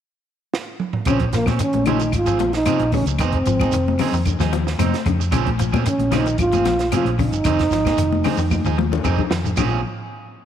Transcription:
0.54 snare
0.80 mid tom
0.93 floor tom
1.05 fingered electric bass A#1, clean electric guitar C#3 F3 C4 C#4 G#4, trombone C#4, kick, closed hi-hat, claves, shekere
1.20 kick, closed hi-hat
1.33 clean electric guitar F3, trombone A#3, muted clean electric guitar stroke, snare, closed hi-hat, shekere
1.46 fingered electric bass A#2, clean electric guitar C4 C#4, muted clean electric guitar stroke, kick, snare, high conga, claves, shekere
1.59 clean electric guitar D#3, trombone C#4, muted fingered electric bass stroke, muted clean electric guitar stroke, closed hi-hat, shekere
1.73 fingered electric bass A#1, muted clean electric guitar stroke, closed hi-hat, high conga
1.86 clean electric guitar C#3 F3 C4 C#4 G#4, trombone D#4, closed hi-hat, high conga, low conga, claves, shekere
2.00 clean electric guitar D#3, muted clean electric guitar stroke, closed hi-hat, shekere
2.12 fingered electric bass G#1, trombone F4, kick, closed hi-hat, claves, shekere
2.26 clean electric guitar F3 C4 G#4, closed hi-hat, shekere
2.39 fingered electric bass A#1, clean electric guitar F3, muted clean electric guitar stroke, closed hi-hat, high conga
2.53 trombone D#4, muted clean electric guitar stroke, snare, closed hi-hat, shekere
2.65 clean electric guitar C3 F3 C4 C#4 G#4, closed hi-hat, high conga, claves, shekere
2.79 fingered electric bass A#1, closed hi-hat
2.92 clean electric guitar C#3, trombone C#4, muted clean electric guitar stroke, kick, open hi-hat, high conga, low conga, shekere
3.06 fingered electric bass C#2, muted clean electric guitar stroke, closed hi-hat, shekere
3.18 fingered electric bass F1, clean electric guitar D#3 C4 D#4 G#4, trombone C4, kick, closed hi-hat, claves, shekere
3.32 kick, closed hi-hat
3.46 fingered electric bass G#1, clean electric guitar F3, muted clean electric guitar stroke, closed hi-hat, shekere
3.60 clean electric guitar D#4 G#4, kick, high conga, claves, shekere
3.72 fingered electric bass F1, clean electric guitar D#3, muted clean electric guitar stroke, closed hi-hat, shekere
3.88 muted clean electric guitar stroke, high conga
3.99 clean electric guitar C#3 C4 D#4 G#4, open hi-hat, high conga, low conga, claves, shekere
4.13 fingered electric bass F2, clean electric guitar D#3, muted clean electric guitar stroke, shekere
4.25 kick, closed hi-hat, low conga, claves, shekere
4.39 fingered electric bass D#2, clean electric guitar F3 D#4 G#4, snare, high conga, shekere
4.53 clean electric guitar F3, muted clean electric guitar stroke, closed hi-hat, high conga
4.67 muted clean electric guitar stroke, snare, shekere
4.79 fingered electric bass F2, clean electric guitar C3 C4 D#4, closed hi-hat, high conga, claves, shekere
4.94 snare, closed hi-hat
5.06 fingered electric bass F2, clean electric guitar C#3, muted clean electric guitar stroke, kick, closed hi-hat, low conga, shekere
5.20 muted clean electric guitar stroke, shekere
5.32 fingered electric bass A#1, clean electric guitar C#3 F3 C4 C#4 G#4, kick, closed hi-hat, low conga, claves, shekere
5.46 kick, closed hi-hat, high conga
5.59 clean electric guitar F3, muted clean electric guitar stroke, closed hi-hat, shekere
5.72 fingered electric bass A#2, clean electric guitar C4 C#4 G#4, kick, high conga, claves, shekere
5.85 clean electric guitar D#3, trombone C#4, muted fingered electric bass stroke, muted clean electric guitar stroke, closed hi-hat, shekere
5.98 fingered electric bass A#1, muted clean electric guitar stroke, closed hi-hat, high conga
6.11 clean electric guitar C#3 F3 C4 C#4 G#4, trombone D#4, snare, closed hi-hat, high conga, low conga, claves, shekere
6.26 clean electric guitar D#3, muted clean electric guitar stroke, closed hi-hat, shekere
6.38 fingered electric bass G#1, trombone F4, kick, closed hi-hat, low conga, claves, shekere
6.52 clean electric guitar F3 C4 G#4, muted clean electric guitar stroke, closed hi-hat, high conga, shekere
6.65 fingered electric bass A#1, clean electric guitar F3, muted clean electric guitar stroke, snare, closed hi-hat, high conga
6.79 muted clean electric guitar stroke, snare, closed hi-hat, shekere
6.92 clean electric guitar C3 F3 C4 C#4 G#4, trombone F4, closed hi-hat, high conga, claves, shekere
7.05 fingered electric bass A#1, closed hi-hat
7.19 clean electric guitar C#3, trombone D#4, muted clean electric guitar stroke, kick, open hi-hat, low conga, shekere
7.32 fingered electric bass G1, muted clean electric guitar stroke, closed hi-hat, shekere
7.44 fingered electric bass F1, clean electric guitar D#3 C4 D#4 G#4, kick, closed hi-hat, low conga, claves, shekere
7.59 kick, snare, closed hi-hat
7.71 fingered electric bass G#1, clean electric guitar F3, muted clean electric guitar stroke, snare, closed hi-hat, shekere
7.85 clean electric guitar D#4 G#4, kick, snare, high conga, claves, shekere
7.97 fingered electric bass F1, clean electric guitar D#3, muted clean electric guitar stroke, closed hi-hat, shekere
8.12 muted clean electric guitar stroke, high conga
8.24 clean electric guitar C#3 C4 D#4 G#4, open hi-hat, high conga, low conga, claves, shekere
8.37 fingered electric bass F2, clean electric guitar D#3, muted clean electric guitar stroke, shekere
8.51 kick, high tom, high conga, claves, shekere
8.64 fingered electric bass D#2, clean electric guitar F3 D#4 G#4, shekere
8.77 clean electric guitar F3, muted clean electric guitar stroke, mid tom, high conga
8.92 muted clean electric guitar stroke, low conga, shekere
9.04 fingered electric bass F2, clean electric guitar C3 C4 D#4 G#4, kick, low conga, claves, shekere
9.18 kick, low conga
9.31 fingered electric bass F2, clean electric guitar D#3, muted clean electric guitar stroke, snare, shekere
9.44 muted clean electric guitar stroke, floor tom, low conga, shekere
9.57 fingered electric bass A#1, clean electric guitar A#2 F3 C4 C#4 G#4, trombone F4, kick, floor tom, ride bell, low conga, claves, shekere

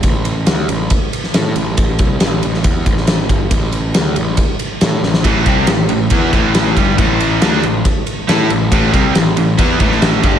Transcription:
0.03 picked electric bass A1, kick, ride
0.25 ride
0.47 picked electric bass D2, snare, ride
0.69 picked electric bass A1, ride
0.90 kick, ride
1.13 ride
1.24 snare
1.34 picked electric bass A2, snare, ride
1.56 picked electric bass A1, ride
1.77 picked electric bass A1, kick, ride
1.99 picked electric bass C2, kick, ride
2.20 picked electric bass A1, snare, ride
2.43 picked electric bass A1, ride
2.54 snare
2.64 picked electric bass E2, kick, ride
2.86 picked electric bass A1, kick, ride
2.97 snare
3.07 snare, ride
3.29 picked electric bass G1, kick, ride
3.51 picked electric bass A1, kick, ride
3.72 ride
3.94 picked electric bass D2, snare, ride
4.16 picked electric bass A1, ride
4.37 kick, ride
4.59 ride
4.81 picked electric bass A2, snare, ride
5.03 picked electric bass A1, snare
5.14 snare
5.24 picked electric bass A1, overdriven electric guitar A2 E3 A3, kick, ride
5.46 picked electric bass C2, overdriven electric guitar C3 G3 C4, kick, ride
5.67 picked electric bass A1, overdriven electric guitar A2 E3, snare, ride
5.89 picked electric bass A1, overdriven electric guitar A2 E3, ride
6.10 picked electric bass E2, overdriven electric guitar E3 B3 E4, kick, ride
6.32 picked electric bass A1, overdriven electric guitar A2 E3 A3, kick, ride
6.55 snare, ride
6.76 picked electric bass G1, overdriven electric guitar G2 D3 G3, kick, ride
6.98 picked electric bass A1, overdriven electric guitar A2 E3 A3, kick, ride
7.20 ride
7.41 picked electric bass D2, overdriven electric guitar D3 A3 D4, snare, ride
7.63 picked electric bass A1, overdriven electric guitar A2 E3, ride
7.85 kick, ride
8.07 ride
8.28 picked electric bass A2, overdriven electric guitar A3 E4 A4, snare, ride
8.50 picked electric bass A1, overdriven electric guitar A2 E3, ride
8.72 picked electric bass A1, overdriven electric guitar A2 E3 A3, kick, ride
8.93 picked electric bass C2, overdriven electric guitar C3 G3 C4, kick, ride
9.15 picked electric bass A1, overdriven electric guitar A2 E3, snare, ride
9.37 picked electric bass A1, overdriven electric guitar A2 E3, ride
9.58 picked electric bass E2, overdriven electric guitar E3 B3 E4, kick, ride
9.80 picked electric bass A1, overdriven electric guitar A2 E3 A3, kick, ride
9.92 snare
10.02 snare, ride
10.22 picked electric bass G1, overdriven electric guitar G2 D3 G3, kick, ride

